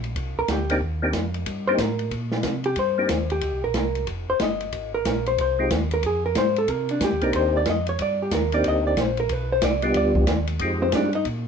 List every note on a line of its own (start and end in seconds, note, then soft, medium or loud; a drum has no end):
0.00 0.15 A#1 medium
0.00 ride soft
0.16 0.35 C2 medium
0.16 kick soft
0.16 ride medium
0.37 0.43 C2 soft
0.37 0.49 A#4 medium
0.48 0.80 D2 medium
0.48 0.81 G4 medium
0.48 kick soft
0.48 snare medium
0.48 hi-hat pedal medium
0.48 ride medium
0.70 0.81 A#3 medium
0.70 0.81 C4 medium
0.70 0.81 D4 medium
0.70 0.81 D#4 medium
0.70 0.81 G4 medium
0.70 ride medium
0.81 1.13 D#2 medium
0.81 kick soft
1.02 1.13 A#3 medium
1.02 1.13 C4 medium
1.02 1.13 D4 medium
1.02 1.14 D#4 medium
1.02 1.14 G4 medium
1.13 1.45 F2 medium
1.13 kick soft
1.13 snare medium
1.13 hi-hat pedal medium
1.13 ride medium
1.34 ride soft
1.46 1.78 G2 medium
1.46 kick soft
1.46 ride medium
1.67 1.78 A#3 medium
1.67 1.79 C4 medium
1.67 1.79 D4 medium
1.67 1.79 D#4 medium
1.67 1.79 G4 medium
1.67 1.80 C5 loud
1.78 2.11 A2 medium
1.78 2.13 A#4 medium
1.78 kick soft
1.78 snare medium
1.78 hi-hat pedal medium
1.78 ride medium
1.99 ride soft
2.11 2.43 A#2 medium
2.11 kick soft
2.11 ride medium
2.32 snare medium
2.43 2.76 C3 medium
2.43 kick soft
2.43 snare medium
2.43 hi-hat pedal medium
2.43 ride medium
2.64 2.77 G4 medium
2.64 ride soft
2.76 3.08 G2 medium
2.76 3.28 C5 medium
2.76 kick soft
2.76 ride medium
2.98 3.09 A#3 medium
2.98 3.09 C4 medium
2.98 3.09 D4 medium
2.98 3.09 D#4 medium
2.98 3.09 G4 medium
3.09 3.41 D#2 medium
3.09 kick soft
3.09 snare medium
3.09 hi-hat pedal medium
3.09 ride medium
3.30 3.62 G4 medium
3.30 ride soft
3.41 3.53 D2 medium
3.41 kick soft
3.41 ride medium
3.53 3.64 C2 medium
3.64 3.74 A#1 medium
3.64 3.75 A#4 medium
3.74 4.06 C2 medium
3.74 4.06 A#4 medium
3.74 kick soft
3.74 snare medium
3.74 hi-hat pedal soft
3.74 ride medium
3.95 ride soft
4.07 4.26 F1 medium
4.07 kick soft
4.07 ride medium
4.28 4.34 F1 soft
4.28 4.41 C5 medium
4.40 4.72 G1 medium
4.40 4.91 D#5 medium
4.40 kick soft
4.40 snare medium
4.40 hi-hat pedal medium
4.40 ride medium
4.61 ride soft
4.72 5.04 G#1 medium
4.72 kick soft
4.72 ride medium
4.94 5.25 A#4 medium
5.05 5.37 A#1 medium
5.05 kick soft
5.05 snare medium
5.05 hi-hat pedal soft
5.05 ride medium
5.26 5.39 C5 medium
5.26 ride soft
5.38 5.70 C2 medium
5.38 5.70 C5 medium
5.38 kick soft
5.38 ride medium
5.59 5.70 G#3 medium
5.59 5.70 C4 medium
5.59 5.70 D#4 medium
5.59 5.70 F4 medium
5.59 5.71 G4 medium
5.70 6.02 D#2 loud
5.70 kick soft
5.70 snare medium
5.70 hi-hat pedal medium
5.70 ride medium
5.91 6.04 A#4 medium
5.91 ride medium
6.03 6.35 F2 medium
6.03 6.25 G#4 medium
6.03 kick soft
6.03 ride medium
6.26 6.37 A#4 medium
6.35 6.67 G#2 medium
6.35 6.57 C5 medium
6.35 kick soft
6.35 snare medium
6.35 hi-hat pedal medium
6.35 ride medium
6.56 6.71 A4 medium
6.56 ride soft
6.68 7.00 C3 medium
6.68 6.90 A#4 medium
6.68 kick soft
6.68 ride medium
6.89 7.02 D4 soft
6.89 ride medium
7.01 7.12 G2 medium
7.01 7.23 G4 medium
7.01 kick soft
7.01 snare medium
7.01 hi-hat pedal medium
7.01 ride medium
7.12 7.23 D#2 medium
7.21 7.33 C2 medium
7.21 7.64 A#3 medium
7.21 7.64 C4 medium
7.21 7.64 D4 medium
7.21 7.65 D#4 medium
7.21 7.65 G4 medium
7.21 7.34 A#4 medium
7.21 ride soft
7.33 7.66 D#2 medium
7.33 7.55 C5 medium
7.33 kick soft
7.33 ride medium
7.57 7.68 D5 medium
7.66 7.98 F2 medium
7.66 kick soft
7.66 snare medium
7.66 hi-hat pedal medium
7.66 ride medium
7.70 7.88 D#5 medium
7.87 8.00 C#5 medium
7.87 ride soft
7.99 8.31 G2 medium
7.99 8.21 D5 medium
7.99 kick soft
7.99 ride medium
8.22 8.33 G4 medium
8.31 8.64 D#2 medium
8.31 8.53 A#4 medium
8.31 kick soft
8.31 snare medium
8.31 hi-hat pedal medium
8.31 ride medium
8.52 8.95 A#3 medium
8.52 8.95 C4 medium
8.52 8.95 D4 medium
8.52 8.96 D#4 medium
8.52 8.96 G4 medium
8.52 8.65 D5 medium
8.52 ride medium
8.64 8.96 D2 medium
8.64 kick soft
8.64 ride medium
8.68 8.87 D#5 loud
8.87 9.00 D5 medium
8.97 9.29 A#1 medium
8.97 9.19 C5 medium
8.97 kick soft
8.97 snare medium
8.97 hi-hat pedal soft
8.97 ride medium
9.17 9.33 A#4 medium
9.17 ride soft
9.29 9.61 B1 medium
9.29 9.51 B4 medium
9.29 kick soft
9.29 ride medium
9.52 9.63 C5 medium
9.62 9.94 C2 medium
9.62 9.84 D5 medium
9.62 kick soft
9.62 snare medium
9.62 hi-hat pedal soft
9.62 ride medium
9.82 10.25 G3 medium
9.82 10.25 B3 medium
9.82 10.26 D4 medium
9.82 10.26 F4 medium
9.82 10.26 G4 medium
9.82 9.95 D#5 medium
9.82 ride soft
9.94 10.26 D2 medium
9.94 10.46 D5 medium
9.94 kick soft
9.94 ride medium
10.15 kick medium
10.27 10.59 D#2 medium
10.27 kick soft
10.27 snare medium
10.27 hi-hat pedal medium
10.27 ride medium
10.47 ride medium
10.59 10.92 F2 medium
10.59 11.10 G#3 medium
10.59 11.10 C4 medium
10.59 11.10 D#4 medium
10.59 11.10 F4 medium
10.59 11.11 G4 medium
10.59 kick soft
10.59 ride medium
10.82 10.93 C4 medium
10.82 10.93 C5 medium
10.92 11.24 G2 medium
10.92 11.15 D4 medium
10.92 11.14 D5 medium
10.92 kick soft
10.92 snare medium
10.92 hi-hat pedal medium
10.92 ride medium
11.13 11.26 D#4 medium
11.13 11.26 D#5 medium
11.13 ride soft
11.25 11.48 A#2 medium
11.25 kick soft
11.25 ride medium